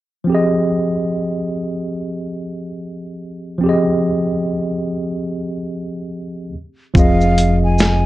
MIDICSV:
0, 0, Header, 1, 5, 480
1, 0, Start_track
1, 0, Key_signature, -4, "minor"
1, 0, Tempo, 833333
1, 164, Time_signature, 4, 2, 24, 8
1, 4641, End_track
2, 0, Start_track
2, 0, Title_t, "Flute"
2, 0, Program_c, 0, 73
2, 4009, Note_on_c, 0, 77, 95
2, 4373, Note_off_c, 0, 77, 0
2, 4401, Note_on_c, 0, 80, 77
2, 4641, Note_off_c, 0, 80, 0
2, 4641, End_track
3, 0, Start_track
3, 0, Title_t, "Tine electric piano"
3, 0, Program_c, 1, 4
3, 140, Note_on_c, 1, 53, 65
3, 156, Note_on_c, 1, 60, 59
3, 170, Note_on_c, 1, 67, 58
3, 186, Note_on_c, 1, 68, 61
3, 199, Note_on_c, 1, 75, 77
3, 257, Control_c, 1, 64, 127
3, 2049, Note_off_c, 1, 53, 0
3, 2057, Note_off_c, 1, 60, 0
3, 2063, Note_on_c, 1, 53, 68
3, 2064, Note_off_c, 1, 67, 0
3, 2072, Note_off_c, 1, 68, 0
3, 2078, Note_off_c, 1, 75, 0
3, 2079, Note_on_c, 1, 60, 67
3, 2095, Note_on_c, 1, 67, 63
3, 2110, Note_on_c, 1, 68, 64
3, 2126, Note_on_c, 1, 75, 74
3, 3730, Note_off_c, 1, 53, 0
3, 3738, Note_off_c, 1, 60, 0
3, 3746, Note_off_c, 1, 67, 0
3, 3754, Note_off_c, 1, 68, 0
3, 3762, Note_off_c, 1, 75, 0
3, 3773, Control_c, 1, 64, 0
3, 3996, Note_on_c, 1, 53, 71
3, 4005, Note_on_c, 1, 60, 64
3, 4011, Note_on_c, 1, 65, 66
3, 4019, Note_on_c, 1, 68, 63
3, 4028, Note_on_c, 1, 75, 77
3, 4103, Control_c, 1, 64, 127
3, 4641, Note_off_c, 1, 53, 0
3, 4641, Note_off_c, 1, 60, 0
3, 4641, Note_off_c, 1, 65, 0
3, 4641, Note_off_c, 1, 68, 0
3, 4641, Note_off_c, 1, 75, 0
3, 4641, End_track
4, 0, Start_track
4, 0, Title_t, "Fingered electric bass"
4, 0, Program_c, 2, 33
4, 4006, Note_on_c, 2, 29, 97
4, 4641, Note_off_c, 2, 29, 0
4, 4641, End_track
5, 0, Start_track
5, 0, Title_t, "Drums"
5, 4003, Note_on_c, 9, 36, 98
5, 4012, Note_on_c, 9, 82, 66
5, 4061, Note_off_c, 9, 36, 0
5, 4070, Note_off_c, 9, 82, 0
5, 4152, Note_on_c, 9, 82, 38
5, 4209, Note_off_c, 9, 82, 0
5, 4250, Note_on_c, 9, 42, 63
5, 4250, Note_on_c, 9, 82, 42
5, 4308, Note_off_c, 9, 42, 0
5, 4308, Note_off_c, 9, 82, 0
5, 4483, Note_on_c, 9, 82, 60
5, 4495, Note_on_c, 9, 38, 99
5, 4541, Note_off_c, 9, 82, 0
5, 4553, Note_off_c, 9, 38, 0
5, 4641, End_track
0, 0, End_of_file